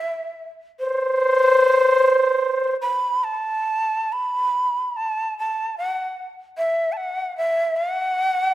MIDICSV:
0, 0, Header, 1, 2, 480
1, 0, Start_track
1, 0, Tempo, 796813
1, 461, Time_signature, 4, 2, 24, 8
1, 1429, Tempo, 865801
1, 2389, Tempo, 835655
1, 3349, Tempo, 787402
1, 5034, End_track
2, 0, Start_track
2, 0, Title_t, "Shakuhachi"
2, 0, Program_c, 0, 77
2, 0, Note_on_c, 0, 76, 111
2, 285, Note_off_c, 0, 76, 0
2, 479, Note_on_c, 0, 72, 115
2, 1646, Note_off_c, 0, 72, 0
2, 1675, Note_on_c, 0, 83, 87
2, 1910, Note_on_c, 0, 81, 88
2, 1918, Note_off_c, 0, 83, 0
2, 2401, Note_on_c, 0, 83, 94
2, 2410, Note_off_c, 0, 81, 0
2, 2883, Note_on_c, 0, 81, 91
2, 2892, Note_off_c, 0, 83, 0
2, 3119, Note_off_c, 0, 81, 0
2, 3125, Note_on_c, 0, 81, 91
2, 3339, Note_off_c, 0, 81, 0
2, 3351, Note_on_c, 0, 78, 92
2, 3655, Note_off_c, 0, 78, 0
2, 3838, Note_on_c, 0, 76, 94
2, 4048, Note_on_c, 0, 81, 60
2, 4057, Note_off_c, 0, 76, 0
2, 4080, Note_on_c, 0, 78, 88
2, 4089, Note_off_c, 0, 81, 0
2, 4319, Note_off_c, 0, 78, 0
2, 4323, Note_on_c, 0, 76, 105
2, 4561, Note_on_c, 0, 78, 107
2, 4571, Note_off_c, 0, 76, 0
2, 5034, Note_off_c, 0, 78, 0
2, 5034, End_track
0, 0, End_of_file